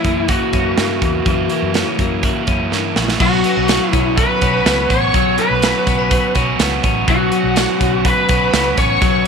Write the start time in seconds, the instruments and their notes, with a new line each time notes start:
Already playing: clean electric guitar E3 C#4, lead electric guitar E4
0.04 fingered electric bass F#2, overdriven electric guitar E3 A#3 E4, kick, closed hi-hat
0.28 overdriven electric guitar C#3 E3 A#3 E4, lead electric guitar F#4, clean electric guitar F#4, kick, closed hi-hat
0.53 fingered electric bass F#2, overdriven electric guitar E3 A#3 E4, clean electric guitar C#4, kick, closed hi-hat
0.77 overdriven electric guitar F#2 C#3 E3 A#3 E4, fingered electric bass G2, snare, closed hi-hat
1.02 fingered electric bass E2, clean electric guitar F#4, kick, closed hi-hat
1.25 overdriven electric guitar F#2 C#3 E3 A#3 E4, fingered electric bass F#2, kick, closed hi-hat
1.50 overdriven electric guitar E3 A#3 E4, closed hi-hat
1.62 fingered electric bass F#2
1.74 overdriven electric guitar F#2 C#3 E3 A#3 E4, clean electric guitar C#4, snare, closed hi-hat
1.99 fingered electric bass F#2, overdriven electric guitar E3 A#3 E4, kick, closed hi-hat
2.23 overdriven electric guitar C#3 E3 A#3 E4, clean electric guitar F#4, kick, closed hi-hat
2.47 fingered electric bass F#2, overdriven electric guitar E3 A#3 E4, clean electric guitar C#4, kick, closed hi-hat
2.71 overdriven electric guitar F#2 C#3 E3 A#3 E4, fingered electric bass G2, snare
2.96 fingered electric bass A#1, clean electric guitar F#4, snare
3.08 snare
3.20 fingered electric bass B1, overdriven electric guitar B2 F#3 B3 C#4 F#4, lead electric guitar F#4, violin section F#5, kick, crash, tambourine
3.44 overdriven electric guitar B3 C#4 F#4, closed hi-hat, tambourine
3.57 fingered electric bass B1, clean electric guitar C#4
3.68 overdriven electric guitar F#3 B3 C#4 F#4, snare, closed hi-hat, tambourine
3.87 violin section E5
3.91 fingered electric bass B1, clean electric guitar C#4, lead electric guitar E4, kick, closed hi-hat, tambourine
4.17 clean electric guitar E4, lead electric guitar B4, violin section B5, kick, closed hi-hat, tambourine
4.29 clean electric guitar F#4
4.41 fingered electric bass B1, overdriven electric guitar B3 C#4 F#4, kick, closed hi-hat, tambourine
4.65 fingered electric bass C#2, overdriven electric guitar F#3 B3 C#4 F#4, snare, closed hi-hat, tambourine
4.89 fingered electric bass A1, overdriven electric guitar B3 C#4 F#4, lead electric guitar C#5, violin section C#6, kick, closed hi-hat, tambourine
5.14 fingered electric bass B1, overdriven electric guitar B2 F#3 B3 C#4 F#4, kick, closed hi-hat, tambourine
5.38 overdriven electric guitar B3 C#4 F#4, lead electric guitar B4, violin section B5, closed hi-hat
5.51 fingered electric bass B1
5.62 overdriven electric guitar F#3 B3 C#4 F#4, snare, closed hi-hat, tambourine
5.87 fingered electric bass B1, clean electric guitar B3, kick, closed hi-hat, tambourine
5.99 clean electric guitar C#4
6.11 clean electric guitar F#4, kick, closed hi-hat
6.35 fingered electric bass B1, overdriven electric guitar B3 C#4 F#4, kick, closed hi-hat, tambourine
6.59 fingered electric bass C#2, overdriven electric guitar F#3 B3 C#4 F#4, snare, closed hi-hat, tambourine
6.83 fingered electric bass A1, overdriven electric guitar B3 C#4 F#4, kick, closed hi-hat, tambourine
7.07 fingered electric bass B1, overdriven electric guitar B2 F#3 B3 C#4 F#4, lead electric guitar F#4, violin section F#5, kick, closed hi-hat, tambourine
7.32 overdriven electric guitar B3 C#4 F#4, closed hi-hat
7.43 fingered electric bass B1
7.56 overdriven electric guitar F#3 B3 C#4 F#4, snare, closed hi-hat, tambourine
7.81 fingered electric bass B1, clean electric guitar C#4, kick, closed hi-hat, tambourine
8.05 clean electric guitar F#4, lead electric guitar B4, violin section B5, kick, closed hi-hat
8.29 fingered electric bass B1, overdriven electric guitar B3 C#4 F#4, kick, closed hi-hat, tambourine
8.53 fingered electric bass C#2, overdriven electric guitar F#3 B3 C#4 F#4, snare, closed hi-hat, tambourine
8.77 fingered electric bass A1, overdriven electric guitar B3 C#4 F#4, lead electric guitar C#5, violin section C#6, kick, closed hi-hat, tambourine
9.02 fingered electric bass B1, overdriven electric guitar B2 F#3 B3 C#4 F#4, kick, closed hi-hat, tambourine